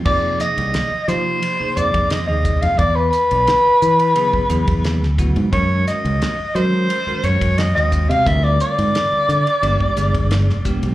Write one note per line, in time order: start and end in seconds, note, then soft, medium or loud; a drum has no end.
0.05 0.37 F2 medium
0.05 0.88 C3 medium
0.05 0.88 F3 medium
0.05 0.88 A#3 medium
0.05 0.89 D#4 medium
0.05 0.89 G#4 medium
0.05 0.38 D5 medium
0.05 kick medium
0.05 crash medium
0.40 1.10 D#5 medium
0.40 snare soft
0.40 hi-hat pedal medium
0.40 ride soft
0.57 0.73 C2 medium
0.57 ride soft
0.74 snare loud
0.74 ride medium
0.91 muted fingered electric bass stroke soft
1.08 1.50 C3 medium
1.08 1.39 F3 medium
1.08 1.50 F3 medium
1.08 1.50 A#3 medium
1.08 1.50 D#4 medium
1.08 1.50 G4 medium
1.08 1.78 C5 medium
1.08 snare soft
1.08 hi-hat pedal medium
1.08 ride medium
1.42 ride medium
1.60 1.73 C3 medium
1.60 1.73 F3 medium
1.60 1.73 A#3 medium
1.60 1.74 D#4 medium
1.60 1.74 G#4 medium
1.60 muted fingered electric bass stroke soft
1.76 1.93 F2 medium
1.76 2.18 C3 medium
1.76 2.18 F3 medium
1.76 2.18 A#3 medium
1.76 2.18 D#4 medium
1.76 2.18 G#4 medium
1.76 2.12 D5 medium
1.76 hi-hat pedal medium
1.76 ride medium
1.94 2.29 F2 medium
1.94 kick medium
1.94 ride medium
2.10 2.27 D#5 medium
2.10 snare medium
2.10 ride medium
2.27 2.60 D#2 medium
2.27 2.79 C3 medium
2.27 2.79 F3 medium
2.27 2.79 A#3 medium
2.27 2.79 D#4 medium
2.27 2.79 G#4 medium
2.27 2.63 D#5 medium
2.45 kick medium
2.45 hi-hat pedal medium
2.45 ride medium
2.62 2.78 F2 medium
2.62 2.80 F5 medium
2.62 ride medium
2.78 3.10 E2 medium
2.78 2.97 D5 medium
2.78 kick medium
2.78 ride medium
2.96 3.10 B4 medium
3.11 5.13 B4 medium
3.11 hi-hat pedal medium
3.11 ride soft
3.31 3.46 B1 medium
3.31 ride medium
3.47 snare medium
3.47 ride medium
3.66 muted fingered electric bass stroke soft
3.82 4.13 E3 medium
3.82 hi-hat pedal medium
3.82 ride soft
3.99 ride medium
4.16 4.43 C#3 medium
4.16 4.44 F#3 medium
4.16 4.44 B3 medium
4.16 4.44 E4 medium
4.16 4.44 G#4 medium
4.16 ride medium
4.33 muted fingered electric bass stroke soft
4.33 kick medium
4.49 4.66 E2 medium
4.49 5.05 C#3 medium
4.49 5.05 F#3 medium
4.49 5.05 B3 medium
4.49 5.05 E4 medium
4.49 5.05 G#4 medium
4.49 hi-hat pedal medium
4.49 ride soft
4.68 5.01 E2 medium
4.68 kick medium
4.68 ride medium
4.84 snare medium
4.84 ride medium
5.01 5.33 D2 medium
5.01 snare soft
5.18 5.46 C#3 medium
5.18 5.46 F#3 medium
5.18 5.46 B3 medium
5.18 5.46 E4 medium
5.18 5.46 F#4 medium
5.18 kick medium
5.18 hi-hat pedal medium
5.18 ride soft
5.36 5.51 G#2 medium
5.36 ride soft
5.53 5.84 F#2 medium
5.53 6.35 D#3 medium
5.53 6.36 G#3 medium
5.53 6.36 C#4 medium
5.53 6.36 F#4 medium
5.53 6.36 A#4 medium
5.53 5.84 C#5 medium
5.53 kick medium
5.53 ride medium
5.87 6.57 D#5 medium
5.87 snare soft
5.87 hi-hat pedal medium
5.87 ride soft
6.05 6.20 C#2 medium
6.05 ride soft
6.22 snare medium
6.22 ride medium
6.40 muted fingered electric bass stroke soft
6.55 6.97 D#3 medium
6.55 6.86 F#3 medium
6.55 6.97 G#3 medium
6.55 6.97 C#4 medium
6.55 6.97 F#4 medium
6.55 6.97 A#4 medium
6.55 7.25 C5 medium
6.55 hi-hat pedal medium
6.55 ride medium
6.90 ride medium
7.07 7.21 D#3 medium
7.07 7.21 G#3 medium
7.07 7.21 C#4 medium
7.07 7.21 F#4 medium
7.07 7.21 A#4 medium
7.07 muted fingered electric bass stroke soft
7.23 7.40 F#2 medium
7.23 7.65 D#3 medium
7.23 7.65 G#3 medium
7.23 7.65 C#4 medium
7.23 7.65 F#4 medium
7.23 7.65 A#4 medium
7.23 7.60 C#5 medium
7.23 hi-hat pedal medium
7.23 ride medium
7.41 7.76 F#2 medium
7.41 kick medium
7.41 ride medium
7.58 7.74 D#5 medium
7.58 snare medium
7.58 ride medium
7.75 8.07 D#2 medium
7.75 8.26 D#3 medium
7.75 8.26 G#3 medium
7.75 8.26 C#4 medium
7.75 8.27 F#4 medium
7.75 8.26 C5 medium
7.75 8.11 D#5 medium
7.75 snare soft
7.92 kick medium
7.92 hi-hat pedal medium
7.92 ride medium
8.09 8.25 C3 medium
8.09 8.28 F5 medium
8.09 ride medium
8.26 8.57 D2 medium
8.26 9.36 D3 medium
8.26 9.36 G3 medium
8.26 9.36 C4 medium
8.26 9.36 F4 medium
8.26 9.37 A#4 medium
8.26 8.46 E5 medium
8.26 kick medium
8.26 ride medium
8.44 8.60 D5 medium
8.60 10.62 D5 medium
8.60 hi-hat pedal medium
8.60 ride soft
8.79 8.93 G#2 medium
8.79 ride medium
8.95 snare medium
8.95 ride medium
9.13 muted fingered electric bass stroke soft
9.29 9.45 D3 medium
9.29 hi-hat pedal medium
9.29 ride soft
9.47 ride soft
9.63 9.79 G1 medium
9.63 9.90 F3 medium
9.63 9.90 G#3 medium
9.63 9.90 B3 medium
9.63 9.90 D4 medium
9.63 9.90 G4 medium
9.63 ride medium
9.80 kick medium
9.97 10.13 G1 medium
9.97 10.52 F3 medium
9.97 10.52 G#3 medium
9.97 10.52 B3 medium
9.97 10.52 D4 medium
9.97 10.53 G#4 medium
9.97 hi-hat pedal medium
9.97 ride medium
10.14 10.49 G1 medium
10.14 kick medium
10.14 ride soft
10.31 snare medium
10.31 ride medium
10.49 10.80 F1 medium
10.49 snare soft
10.65 10.93 F3 medium
10.65 10.93 G#3 medium
10.65 10.93 B3 medium
10.65 10.93 D4 medium
10.65 10.93 G4 medium
10.65 kick medium
10.65 hi-hat pedal medium
10.65 ride soft
10.83 10.95 B1 medium
10.83 ride soft